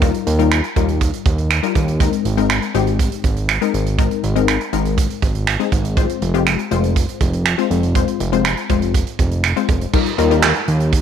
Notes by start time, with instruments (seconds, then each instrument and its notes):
Already playing: analog synth bass D#2
0.02 synth pluck G3 D#4 F4 A#4, kick, closed hi-hat
0.14 closed hi-hat
0.27 analog synth bass D#2, closed hi-hat
0.39 synth pluck G3 D#4 F4 A#4, closed hi-hat
0.52 finger snap, closed hi-hat
0.64 closed hi-hat
0.76 analog synth bass D#2, synth pluck G3 D#4 F4 A#4, kick, closed hi-hat
0.88 closed hi-hat
1.01 kick, closed hi-hat
1.13 closed hi-hat
1.26 analog synth bass D#2, kick, closed hi-hat
1.38 closed hi-hat
1.51 finger snap, closed hi-hat
1.63 synth pluck G3 D#4 F4 A#4, closed hi-hat
1.75 analog synth bass D#2, kick, closed hi-hat
1.88 closed hi-hat
2.00 synth pluck G#3 C4 D#4 A#4, kick, closed hi-hat
2.13 closed hi-hat
2.25 analog synth bass G#1, closed hi-hat
2.37 synth pluck G#3 C4 D#4 A#4, closed hi-hat
2.50 finger snap, closed hi-hat
2.62 closed hi-hat
2.74 analog synth bass G#1, synth pluck G#3 C4 D#4 G4, closed hi-hat
2.87 closed hi-hat
2.99 kick, closed hi-hat
3.12 closed hi-hat
3.24 analog synth bass G#1, kick, closed hi-hat
3.36 closed hi-hat
3.49 finger snap, closed hi-hat
3.61 synth pluck G#3 C4 D#4 A#4, closed hi-hat
3.74 analog synth bass G#1, closed hi-hat
3.86 closed hi-hat
3.98 synth pluck G#3 C4 D#4 A#4, kick, closed hi-hat
4.11 closed hi-hat
4.23 analog synth bass G#1, closed hi-hat
4.36 synth pluck G#3 C4 D#4 A#4, closed hi-hat
4.48 finger snap, closed hi-hat
4.60 closed hi-hat
4.73 analog synth bass G#1, synth pluck G#3 C4 D#4 A#4, closed hi-hat
4.85 closed hi-hat
4.98 kick, closed hi-hat
5.10 closed hi-hat
5.22 analog synth bass G#1, kick, closed hi-hat
5.35 closed hi-hat
5.47 finger snap, closed hi-hat
5.60 synth pluck G#3 C4 D#4 G#4, closed hi-hat
5.72 analog synth bass G#1, kick, closed hi-hat
5.85 closed hi-hat
5.97 synth pluck G#3 C4 F4 C5, kick, closed hi-hat
6.09 closed hi-hat
6.22 analog synth bass F1, closed hi-hat
6.34 synth pluck G#3 C4 F4 G4, closed hi-hat
6.47 finger snap, closed hi-hat
6.59 closed hi-hat
6.71 analog synth bass F1, synth pluck G#3 C4 F4 C5, closed hi-hat
6.84 closed hi-hat
6.96 kick, closed hi-hat
7.08 closed hi-hat
7.21 analog synth bass F1, kick, closed hi-hat
7.33 closed hi-hat
7.46 finger snap, closed hi-hat
7.58 synth pluck G#3 C4 F4 C5, closed hi-hat
7.70 analog synth bass F1, closed hi-hat
7.83 closed hi-hat
7.95 synth pluck G#3 C4 F4 C5, kick, closed hi-hat
8.08 closed hi-hat
8.20 analog synth bass F1, closed hi-hat
8.32 synth pluck G#3 C4 F4 C5, closed hi-hat
8.45 finger snap, closed hi-hat
8.57 closed hi-hat
8.69 analog synth bass F1, synth pluck G#3 C4 F4 C5, kick, closed hi-hat
8.82 closed hi-hat
8.94 kick, closed hi-hat
9.07 closed hi-hat
9.19 analog synth bass F1, kick, closed hi-hat
9.31 closed hi-hat
9.44 finger snap, closed hi-hat
9.56 synth pluck G#3 C4 F4 C5, closed hi-hat
9.69 analog synth bass F1, kick, closed hi-hat
9.81 closed hi-hat
9.93 synth pluck G3 D#4 F4 A#4, kick, crash
10.06 closed hi-hat
10.18 analog synth bass D#2, synth pluck G3 D#4 F4 A#4, closed hi-hat
10.31 synth pluck G3 D#4 F4 A#4, closed hi-hat
10.43 snare, clap
10.55 closed hi-hat
10.68 analog synth bass D#2, closed hi-hat
10.80 closed hi-hat
10.93 kick, closed hi-hat